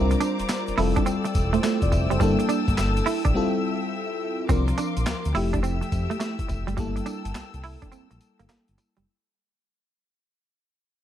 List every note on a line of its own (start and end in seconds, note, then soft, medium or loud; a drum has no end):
0.00 0.16 C2 loud
0.00 0.76 G3 medium
0.00 0.77 C4 medium
0.00 0.78 D4 medium
0.00 0.78 F4 medium
0.00 0.79 A#4 medium
0.00 0.77 C5 medium
0.00 2.19 D5 medium
0.00 0.77 A#5 medium
0.00 0.77 D6 medium
0.11 muted clean electric guitar stroke soft
0.11 closed hi-hat medium
0.11 shaker medium
0.20 0.36 D4 medium
0.20 closed hi-hat medium
0.20 tambourine medium
0.39 0.44 F1 soft
0.39 closed hi-hat medium
0.39 shaker medium
0.49 muted clean electric guitar stroke soft
0.49 snare loud
0.49 clap medium
0.49 closed hi-hat medium
0.49 tambourine loud
0.49 shaker medium
0.67 0.72 F1 soft
0.67 closed hi-hat medium
0.67 shaker medium
0.77 0.93 F1 loud
0.77 2.18 G3 medium
0.77 2.18 C4 medium
0.77 0.93 E4 medium
0.77 2.18 E4 medium
0.77 2.19 F4 medium
0.77 2.19 A4 medium
0.77 4.46 G5 medium
0.77 4.46 E6 loud
0.77 open hi-hat medium
0.96 1.05 D4 medium
0.96 kick loud
0.96 closed hi-hat medium
0.96 shaker soft
1.06 1.22 C4 medium
1.06 closed hi-hat medium
1.06 tambourine medium
1.06 shaker medium
1.25 muted clean electric guitar stroke soft
1.25 closed hi-hat medium
1.25 shaker medium
1.35 1.58 E1 medium
1.35 kick loud
1.35 closed hi-hat medium
1.35 tambourine medium
1.35 shaker soft
1.53 1.61 A3 medium
1.53 1.81 C5 medium
1.53 closed hi-hat medium
1.53 shaker soft
1.63 1.79 A3 medium
1.63 snare loud
1.63 clap loud
1.63 closed hi-hat medium
1.63 tambourine loud
1.63 shaker medium
1.82 1.90 F1 medium
1.82 1.92 D5 medium
1.82 kick medium
1.82 closed hi-hat medium
1.82 shaker soft
1.92 2.07 F1 medium
1.92 2.10 E5 medium
1.92 muted clean electric guitar stroke soft
1.92 kick loud
1.92 closed hi-hat medium
1.92 tambourine medium
2.10 2.19 F#1 loud
2.10 2.19 G3 medium
2.10 2.38 C5 medium
2.10 closed hi-hat soft
2.10 shaker soft
2.20 2.36 G1 loud
2.20 2.36 G3 medium
2.20 3.33 G3 medium
2.20 3.34 A#3 medium
2.20 3.33 A#3 medium
2.20 3.33 D4 medium
2.20 3.33 E4 medium
2.20 3.34 A4 medium
2.20 3.34 A5 medium
2.20 kick loud
2.20 closed hi-hat medium
2.20 tambourine medium
2.20 shaker medium
2.39 muted clean electric guitar stroke soft
2.39 closed hi-hat medium
2.39 shaker medium
2.49 2.64 D4 medium
2.49 closed hi-hat medium
2.49 tambourine medium
2.49 shaker soft
2.68 2.76 G1 medium
2.68 kick loud
2.68 closed hi-hat medium
2.68 shaker medium
2.78 3.01 G1 medium
2.78 muted clean electric guitar stroke soft
2.78 snare loud
2.78 clap medium
2.78 closed hi-hat medium
2.78 tambourine loud
2.78 shaker medium
2.97 closed hi-hat medium
2.97 shaker medium
3.06 3.22 E4 medium
3.06 open hi-hat medium
3.06 shaker medium
3.25 3.33 A#1 medium
3.25 3.33 D4 medium
3.25 kick loud
3.25 closed hi-hat medium
3.25 shaker soft
3.34 4.47 G3 medium
3.34 4.47 C4 medium
3.34 4.47 E4 medium
3.34 4.48 F4 medium
3.34 4.48 A4 medium
3.34 4.48 E5 medium
4.49 4.73 C2 medium
4.49 5.33 F3 medium
4.49 4.65 C4 medium
4.49 5.35 C4 medium
4.49 5.35 D4 medium
4.49 5.34 A#4 medium
4.49 5.36 A#4 medium
4.49 5.34 F5 medium
4.49 5.34 C6 medium
4.49 5.34 D6 medium
4.49 kick loud
4.49 closed hi-hat medium
4.49 tambourine medium
4.49 shaker medium
4.68 muted clean electric guitar stroke soft
4.68 closed hi-hat medium
4.68 shaker medium
4.78 4.93 D4 medium
4.78 closed hi-hat medium
4.78 tambourine medium
4.97 5.05 A#1 medium
4.97 closed hi-hat medium
4.97 shaker medium
5.06 5.14 D2 medium
5.06 muted clean electric guitar stroke soft
5.06 snare loud
5.06 clap loud
5.06 closed hi-hat medium
5.06 tambourine medium
5.06 shaker medium
5.25 5.34 D2 loud
5.25 closed hi-hat medium
5.25 shaker medium
5.34 5.82 F1 loud
5.34 6.75 F3 medium
5.34 6.75 A3 medium
5.34 5.50 E4 medium
5.34 6.75 E4 medium
5.34 6.76 G4 medium
5.34 6.76 A4 medium
5.34 6.76 E5 medium
5.34 6.76 G5 medium
5.34 6.76 E6 loud
5.34 open hi-hat medium
5.53 5.62 D4 medium
5.53 kick loud
5.53 closed hi-hat medium
5.53 shaker soft
5.63 5.79 C4 medium
5.63 closed hi-hat medium
5.63 tambourine medium
5.63 shaker medium
5.81 muted clean electric guitar stroke soft
5.81 closed hi-hat medium
5.81 shaker medium
5.92 6.07 F2 medium
5.92 kick medium
5.92 closed hi-hat medium
5.92 tambourine medium
5.92 shaker medium
6.10 6.19 A3 medium
6.10 closed hi-hat medium
6.10 shaker soft
6.20 6.35 A3 medium
6.20 snare loud
6.20 clap medium
6.20 closed hi-hat medium
6.20 tambourine medium
6.20 shaker medium
6.39 kick medium
6.39 closed hi-hat medium
6.39 shaker soft
6.49 6.65 F1 loud
6.49 muted clean electric guitar stroke soft
6.49 kick loud
6.49 closed hi-hat medium
6.49 tambourine medium
6.67 6.76 F#1 medium
6.67 6.76 G3 medium
6.67 closed hi-hat soft
6.67 shaker soft
6.77 7.01 G1 loud
6.77 6.93 G3 medium
6.77 9.02 G3 medium
6.77 9.04 A#3 medium
6.77 9.03 A#3 medium
6.77 9.03 E4 medium
6.77 9.03 A4 medium
6.77 9.04 G5 medium
6.77 9.04 A5 medium
6.77 9.04 E6 loud
6.77 kick loud
6.77 closed hi-hat medium
6.77 tambourine medium
6.77 shaker medium
6.96 muted clean electric guitar stroke soft
6.96 closed hi-hat medium
6.96 shaker medium
7.06 7.21 D4 medium
7.06 closed hi-hat medium
7.06 tambourine medium
7.25 7.33 G1 medium
7.25 closed hi-hat medium
7.25 shaker medium
7.35 7.43 C2 soft
7.35 muted clean electric guitar stroke soft
7.35 snare loud
7.35 clap medium
7.35 closed hi-hat medium
7.35 tambourine loud
7.35 shaker medium
7.54 7.77 C2 loud
7.54 closed hi-hat medium
7.54 shaker medium
7.64 7.79 E4 medium
7.64 open hi-hat medium
7.82 7.90 D4 medium
7.82 kick loud
7.82 closed hi-hat medium
7.82 shaker soft
7.92 8.07 C4 medium
7.92 closed hi-hat medium
7.92 tambourine medium
7.92 shaker medium
8.11 8.19 A#1 medium
8.11 muted clean electric guitar stroke soft
8.11 closed hi-hat soft
8.11 shaker medium
8.21 closed hi-hat medium
8.21 tambourine medium
8.21 shaker soft
8.39 8.48 G1 loud
8.39 8.48 A#3 medium
8.39 closed hi-hat medium
8.39 shaker soft
8.49 8.58 G1 medium
8.49 8.65 A#3 medium
8.49 snare loud
8.49 clap medium
8.49 closed hi-hat medium
8.49 tambourine medium
8.49 shaker medium
8.68 8.77 G1 medium
8.68 closed hi-hat medium
8.68 shaker soft
8.78 muted clean electric guitar stroke soft
8.78 closed hi-hat medium
8.78 tambourine medium
8.97 9.05 F#1 medium
8.97 9.05 G3 medium
8.97 closed hi-hat soft